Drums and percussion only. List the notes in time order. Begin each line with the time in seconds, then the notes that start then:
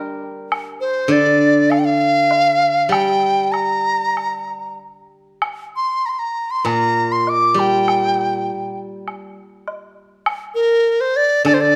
0.52 high woodblock
1.72 high woodblock
2.31 low woodblock
2.92 high woodblock
3.54 high woodblock
4.17 high woodblock
5.42 high woodblock
6.66 high woodblock
7.27 low woodblock
7.88 high woodblock
9.08 high woodblock
9.68 low woodblock
10.26 high woodblock
11.46 high woodblock